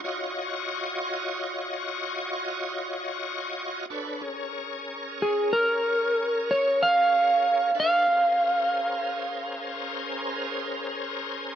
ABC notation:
X:1
M:12/8
L:1/8
Q:3/8=62
K:Bbm
V:1 name="Electric slide guitar"
z12 | z4 A B3 d f3 | f8- f2 z2 |]
V:2 name="Tonewheel organ"
[FGde]12 | [=D=A_c_d] [_D_ABd]8- [DABd]3 | [=D=A_c_d] [_D_AB=c]8- [DABc]3 |]